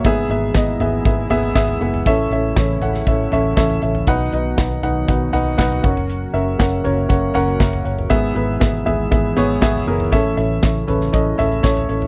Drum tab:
HH |x-x-x-x-x-xxx-xx|x-x-x-x-x-x-x-x-|x-x-x-x-x-x-x-xx|x-x-x-x-x-xxx-x-|
SD |----o-------o---|----o--o----o---|----o-------o---|----o-------o---|
FT |------o---o--o-o|------o---o--o-o|------o---o--o-o|------o---o--o-o|
BD |o---o---o---o---|o---o---o---o---|o---o---o---o-o-|----o---o---o---|

HH |x-x-x-x-x-x-x-x-|x-x-x-x-x-xxx-x-|
SD |----o-------o---|----o--o----o---|
FT |------o------o-o|------o---o--o-o|
BD |o---o---o---o---|o---o---o---o---|